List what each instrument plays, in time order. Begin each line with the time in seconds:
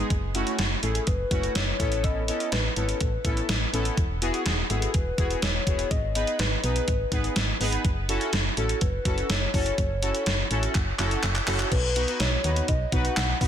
0.10 fm bass F#1, kick, closed hi-hat
0.35 analog polysynth A3 C#4 E4 F#4, closed hi-hat
0.47 closed hi-hat
0.59 fm bass F#1, snare, closed hi-hat
0.83 fm bass A1, analog polysynth A3 C#4 E4 G#4, soft synth lead A4, closed hi-hat
0.95 closed hi-hat
1.07 fm bass F#1, soft synth lead B4, kick, closed hi-hat
1.31 fm bass F#1, analog polysynth A3 C#4 E4 F#4, kick, closed hi-hat
1.43 closed hi-hat
1.55 fm bass F#1, soft synth lead C#5, snare, closed hi-hat
1.80 fm bass A1, analog polysynth B3 C#4 E4 A4, kick, closed hi-hat
1.92 closed hi-hat
2.04 soft synth lead D#5, kick, closed hi-hat
2.28 analog polysynth B3 C#4 E4 A4, soft synth lead D#5, closed hi-hat
2.40 closed hi-hat
2.52 fm bass A1, soft synth lead B4, snare, closed hi-hat
2.76 fm bass G#1, analog polysynth B3 C#4 E4 A4, soft synth lead B4, closed hi-hat
2.89 closed hi-hat
3.00 fm bass A1, kick, closed hi-hat
3.25 fm bass A1, analog polysynth B3 C#4 E4 A4, kick, closed hi-hat
3.37 closed hi-hat
3.49 fm bass A1, snare, closed hi-hat
3.73 fm bass A1, analog polysynth B3 C#4 E4 A4, closed hi-hat
3.85 closed hi-hat
3.97 fm bass E1, kick, closed hi-hat
4.22 analog polysynth B3 E4 F#4 G#4, closed hi-hat
4.34 closed hi-hat
4.46 fm bass E1, snare, closed hi-hat
4.70 fm bass G#1, analog polysynth B3 E4 F#4 G#4, soft synth lead A4, closed hi-hat
4.82 closed hi-hat
4.94 fm bass E1, soft synth lead B4, kick, closed hi-hat
5.18 fm bass E1, analog polysynth B3 E4 F#4 G#4, kick, closed hi-hat
5.30 closed hi-hat
5.42 fm bass E1, soft synth lead C#5, snare, closed hi-hat
5.67 fm bass E1, analog polysynth B3 E4 F#4 G#4, kick, closed hi-hat
5.79 closed hi-hat
5.91 fm bass G#1, soft synth lead D#5, kick, closed hi-hat
6.15 analog polysynth B3 D#4 G#4 B4, soft synth lead D#5, closed hi-hat
6.27 closed hi-hat
6.39 fm bass G#1, soft synth lead B4, snare, closed hi-hat
6.64 fm bass B1, analog polysynth B3 D#4 G#4 B4, soft synth lead B4, closed hi-hat
6.76 closed hi-hat
6.88 fm bass G#1, kick, closed hi-hat
7.12 fm bass G#1, analog polysynth B3 D#4 G#4 B4, kick, closed hi-hat
7.24 closed hi-hat
7.36 fm bass G#1, snare, closed hi-hat
7.60 fm bass G#1, analog polysynth B3 D#4 G#4 B4, open hi-hat
7.72 closed hi-hat
7.85 fm bass F#1, kick, closed hi-hat
8.09 analog polysynth C#4 E4 F#4 A4, closed hi-hat
8.21 closed hi-hat
8.33 fm bass F#1, snare, closed hi-hat
8.57 fm bass A1, analog polysynth C#4 E4 F#4 A4, soft synth lead A4, closed hi-hat
8.69 closed hi-hat
8.81 fm bass F#1, soft synth lead B4, kick, closed hi-hat
9.05 fm bass F#1, analog polysynth C#4 E4 F#4 A4, kick, closed hi-hat
9.18 closed hi-hat
9.30 fm bass F#1, soft synth lead C#5, snare, closed hi-hat
9.54 fm bass F#1, analog polysynth C#4 E4 F#4 A4, soft synth lead C#5, kick, open hi-hat
9.66 closed hi-hat
9.78 fm bass F#1, kick, closed hi-hat
10.02 analog polysynth C#4 E4 F#4 A4, closed hi-hat
10.15 closed hi-hat
10.26 fm bass F#1, snare, closed hi-hat
10.51 fm bass A1, analog polysynth C#4 E4 F#4 A4, closed hi-hat
10.63 closed hi-hat
10.75 fm bass F#1, kick, clap, closed hi-hat
10.99 fm bass F#1, analog polysynth C#4 E4 F#4 A4, clap, closed hi-hat
11.11 closed hi-hat
11.23 fm bass F#1, clap, closed hi-hat
11.35 clap
11.47 fm bass F#1, analog polysynth C#4 E4 F#4 A4, clap, open hi-hat
11.59 clap, closed hi-hat
11.72 fm bass B1, soft synth lead B4, kick, closed hi-hat, crash
11.96 analog polysynth B3 D#4 F#4 B4, closed hi-hat
12.08 analog polysynth B3 D#4 F#4 B4, closed hi-hat
12.20 fm bass B1, soft synth lead C#5, snare, closed hi-hat
12.44 fm bass D#2, analog polysynth B3 D#4 F#4 B4, closed hi-hat
12.56 closed hi-hat
12.68 fm bass B1, soft synth lead D#5, kick, closed hi-hat
12.92 fm bass B1, analog polysynth B3 D#4 F#4 B4, soft synth lead F#5, kick, closed hi-hat
13.05 closed hi-hat
13.17 fm bass B1, snare, clap, closed hi-hat
13.41 fm bass B1, analog polysynth B3 D#4 F#4 B4, soft synth lead F#5, kick, open hi-hat